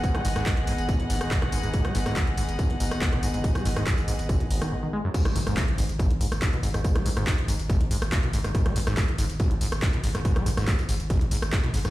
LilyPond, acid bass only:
\new Staff \with { instrumentName = "Acid bass" } { \clef bass \time 4/4 \key gis \minor \tempo 4 = 141 gis,16 gis16 gis,16 gis,16 gis,16 r16 gis,16 r16 gis,,16 gis16 gis,16 r16 gis,16 b,16 gis,16 gis,16 | gis,16 gis16 gis,16 gis,16 gis,16 r16 gis,16 r16 gis,,16 gis16 gis,16 r16 gis,16 b,16 gis,16 gis,16 | gis,16 gis16 gis,16 gis,16 gis,16 r16 gis,16 r16 gis,,16 gis16 gis,,16 dis16 gis,16 dis16 gis16 fis,16 | gis,16 gis16 gis,16 gis,16 gis,16 r16 gis,16 r16 gis,,16 gis16 gis,16 r16 gis,16 b,16 gis,16 gis,16 |
gis,16 gis16 gis,16 gis,16 gis,16 r16 gis,16 r16 gis,,16 gis16 gis,16 r16 gis,16 b,16 gis,16 gis,16 | gis,16 gis16 gis,16 gis,16 gis,16 r16 gis,16 r16 gis,,16 gis16 gis,16 r16 gis,16 b,16 gis,16 gis,16 | gis,16 gis16 gis,16 gis,16 gis,16 r16 gis,16 r16 gis,,16 gis16 gis,16 r16 gis,16 b,16 gis,16 gis,16 | }